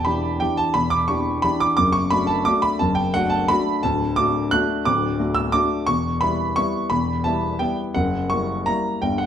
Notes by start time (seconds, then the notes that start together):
Already playing: E1 E2 A5
0.05 E3 D4 G4 B5
0.40 E3 D4 G4 G5
0.57 A5
0.74 E1 E2 B5
0.90 D6
1.08 E3 D4 G4 C#6
1.42 E3 D4 G4 B5
1.60 D6
1.77 F#1 F#2 D6
1.92 C#6
2.10 A3 D4 F#4 B5
2.27 A5
2.45 A3 D4 F#4 D6
2.62 B5
2.79 F#1 F#2 A5
2.95 G5
3.14 A3 D4 F#4 F#5
3.30 A5
3.48 A3 D4 F#4 B5
3.83 D1 D2 A5
4.16 A3 D4 F#4 D6
4.51 A3 D4 F#4 F#6
4.85 D1 D2 D6
5.19 A3 D4 F#4
5.35 E6
5.52 A3 D4 F#4 D6
5.87 E1 E2 C#6
6.21 G3 B3 E4 B5
6.56 G3 B3 E4 C#6
6.90 E1 E2 B5
7.24 G3 B3 E4 A5
7.59 G3 B3 E4 G5
7.94 F#1 F#2 F#5
8.30 G3 A#3 E4 C#6
8.66 G3 A#3 E4 A#5
9.02 G1 G2 G5
9.18 F#5